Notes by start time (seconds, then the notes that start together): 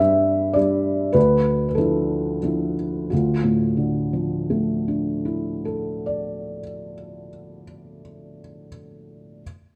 Already playing: G2 B4 E5
0.00 G3 D4
0.53 G3 D4 D5
1.13 D2 B4
1.69 B4
1.75 F3 D4 E4 A4
2.43 F3 D4 E4
3.10 D2 F4
3.44 A2
3.77 D3
4.13 F3
4.50 A3
4.88 D4
5.25 E4
5.65 A4
6.06 D5